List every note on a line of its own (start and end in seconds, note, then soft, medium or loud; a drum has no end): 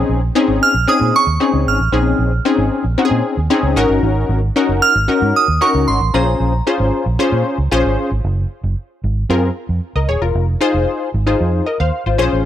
0.00 0.21 C4 loud
0.00 0.21 C#4 medium
0.00 0.21 D#4 medium
0.00 0.22 G#4 loud
0.09 0.29 A#1 medium
0.35 0.74 C4 loud
0.35 0.74 C#4 loud
0.35 0.74 D#4 loud
0.35 0.74 G#4 loud
0.48 0.58 G#1 medium
0.63 0.87 F6 loud
0.74 0.84 A#1 medium
0.87 1.26 C4 medium
0.87 1.26 C#4 medium
0.87 1.27 D#4 medium
0.87 1.27 G#4 loud
0.87 1.13 D#6 loud
1.01 1.11 A#2 loud
1.16 1.69 C#6 loud
1.27 1.37 D#2 medium
1.40 1.79 C4 medium
1.40 1.79 C#4 medium
1.40 1.79 D#4 medium
1.40 1.79 G#4 medium
1.53 1.63 C#2 loud
1.66 1.76 G#1 medium
1.66 3.21 F6 medium
1.80 1.89 A1 medium
1.92 2.12 A#1 loud
1.92 2.31 C4 medium
1.92 2.32 C#4 medium
1.92 2.32 D#4 medium
1.92 2.32 G#4 medium
2.19 2.38 A#1 medium
2.45 2.84 C4 loud
2.45 2.84 C#4 medium
2.45 2.84 D#4 medium
2.45 2.85 G#4 loud
2.58 2.68 G#1 loud
2.84 2.94 A#1 medium
2.98 3.37 C4 loud
2.98 3.37 C#4 medium
2.98 3.37 D#4 medium
2.98 3.05 F#4 medium
3.05 3.40 G#4 loud
3.11 3.21 A#2 loud
3.37 3.47 D#2 medium
3.50 3.77 C4 loud
3.50 3.75 C#4 loud
3.50 3.76 D#4 medium
3.50 3.77 G#4 loud
3.63 3.73 C#2 loud
3.76 3.86 G#1 loud
3.76 4.40 C#4 loud
3.76 4.40 D#4 medium
3.76 4.40 F#4 medium
3.76 4.40 A#4 loud
3.89 3.99 G1 medium
4.03 4.22 G#1 loud
4.29 4.49 G#1 loud
4.56 4.95 C#4 medium
4.56 4.95 D#4 loud
4.56 4.95 F#4 medium
4.56 4.95 A#4 loud
4.69 4.79 F#1 medium
4.82 5.36 F6 loud
4.95 5.05 G#1 medium
5.08 5.47 C#4 medium
5.08 5.47 D#4 medium
5.08 5.47 F#4 medium
5.08 5.47 A#4 medium
5.22 5.32 G#2 loud
5.36 5.63 D#6 loud
5.48 5.58 D#2 medium
5.61 6.00 C#4 medium
5.61 6.00 D#4 medium
5.61 6.00 F#4 medium
5.61 6.00 A#4 loud
5.61 5.89 C#6 loud
5.75 5.84 C#2 loud
5.88 5.98 G#1 medium
5.88 6.12 C6 medium
6.01 6.11 A1 loud
6.14 6.34 A#1 medium
6.14 6.53 C#4 medium
6.14 6.53 F4 medium
6.14 6.53 G#4 medium
6.14 6.53 C5 medium
6.14 7.68 A#5 medium
6.40 6.60 A#1 loud
6.67 7.05 C#4 medium
6.67 7.06 F4 medium
6.67 7.06 G#4 medium
6.67 7.06 C5 loud
6.80 6.90 G#1 loud
7.06 7.16 A#1 medium
7.19 7.58 C#4 loud
7.19 7.58 F4 medium
7.19 7.58 G#4 medium
7.19 7.58 C5 loud
7.19 muted fingered electric bass stroke medium
7.32 7.42 A#2 medium
7.58 7.68 C#2 medium
7.71 7.82 A#1 loud
7.71 8.10 C#4 loud
7.71 8.10 F4 medium
7.71 8.11 G#4 loud
7.71 8.11 C5 loud
7.85 7.95 G#1 medium
8.11 8.21 G#1 medium
8.24 8.44 F#1 medium
8.64 8.73 F#1 loud
9.04 9.23 G#1 loud
9.29 9.49 F#2 loud
9.29 9.49 C4 medium
9.29 9.49 F4 medium
9.29 9.49 G#4 medium
9.29 9.49 A#4 loud
9.69 9.79 F2 medium
9.96 10.05 C#2 medium
9.96 10.08 A#4 medium
9.96 10.08 D#5 medium
10.09 10.18 D#1 loud
10.09 10.21 G#4 medium
10.09 10.21 C#5 medium
10.22 10.31 E1 medium
10.22 10.47 F4 medium
10.22 10.47 A#4 medium
10.35 10.54 F1 loud
10.61 11.09 D#4 medium
10.61 11.10 F4 medium
10.61 11.10 G#4 loud
10.61 11.10 C5 loud
10.74 10.84 F1 loud
11.14 11.34 G#1 loud
11.27 11.66 D#4 medium
11.27 11.66 F4 medium
11.27 11.66 G#4 medium
11.27 11.66 C5 medium
11.41 11.60 F2 loud
11.66 11.79 A#4 medium
11.66 11.79 D#5 medium
11.80 11.90 D#2 medium
11.80 12.05 C5 medium
11.80 12.05 F5 medium
12.06 12.16 G#1 medium
12.06 12.17 F4 medium
12.06 12.18 C5 medium
12.18 12.29 A#1 medium
12.18 12.45 C#4 loud
12.18 12.45 F4 medium
12.18 12.45 G#4 medium
12.18 12.45 C5 loud
12.33 12.42 A1 medium